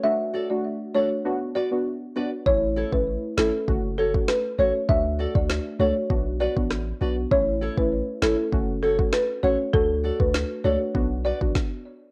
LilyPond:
<<
  \new Staff \with { instrumentName = "Marimba" } { \time 4/4 \key d \lydian \tempo 4 = 99 e''8 r16 d''8 r16 cis''8 r8 d''16 r4 r16 | cis''8 r16 b'8 r16 a'8 r8 a'16 r16 b'16 r16 cis''16 r16 | e''8 r16 d''8 r16 cis''8 r8 d''16 r4 r16 | cis''8 r16 b'8 r16 a'8 r8 a'16 r16 b'16 r16 cis''16 r16 |
a'8 r16 b'8 r16 cis''8 r8 d''16 r4 r16 | }
  \new Staff \with { instrumentName = "Nylon-string guitar" } { \time 4/4 \key d \lydian r8 <fis' a' d''>8 r8 <fis' a' d''>8 r8 <fis' b' d''>8 r8 <fis' b' d''>8 | r8 <e' a' cis''>8 r8 <e' a' cis''>8 r8 <fis' a' cis''>8 r8 <fis' a' cis''>8 | r8 <fis' a' d''>8 r8 <fis' a' d''>8 r8 <fis' b' d''>8 r8 <fis' b' d''>8 | r8 <e' a' cis''>8 r8 <e' a' cis''>8 r8 <fis' a' cis''>8 r8 <fis' a' cis''>8 |
r8 <fis' a' d''>8 r8 <fis' a' d''>8 r8 <fis' b' d''>8 r4 | }
  \new Staff \with { instrumentName = "Synth stab" } { \time 4/4 \key d \lydian <a d' fis'>8. <a d' fis'>8. <a d' fis'>8 <b d' fis'>16 r8 <b d' fis'>16 r8 <b d' fis'>16 r16 | <a cis' e'>8. <a cis' e'>8. <a cis' e'>8 <a cis' fis'>16 r8 <a cis' fis'>16 r8 <a cis' fis'>16 r16 | <a d' fis'>8. <a d' fis'>8. <a d' fis'>8 <b d' fis'>16 r8 <b d' fis'>16 r8 <b d' fis'>16 r16 | <a cis' e'>8. <a cis' e'>8. <a cis' e'>8 <a cis' fis'>16 r8 <a cis' fis'>16 r8 <a cis' fis'>16 r16 |
<a d' fis'>8. <a d' fis'>8. <a d' fis'>8 <b d' fis'>16 r8 <b d' fis'>16 r4 | }
  \new Staff \with { instrumentName = "Sub bass" } { \clef bass \time 4/4 \key d \lydian r1 | a,,8. a,,8 r16 gis,,16 r16 fis,,4 r8 a,,16 r16 | d,8. d,8 r16 cis,16 r16 b,,8. a,,8. b,,8 | a,,8. a,,8 r16 gis,,16 r16 fis,,4 r8 a,,16 r16 |
d,8. d,8 r16 cis,16 r16 b,,8. a,,16 r4 | }
  \new DrumStaff \with { instrumentName = "Drums" } \drummode { \time 4/4 r4 r4 r4 r4 | bd8. bd16 r8 sn8 bd8. bd16 <ss sn>4 | bd8. bd16 sn4 bd8. bd16 <ss sn>4 | bd8. bd16 r8 sn8 bd8. bd16 <ss sn>4 |
bd8. bd16 sn4 bd8. bd16 <bd sn>4 | }
>>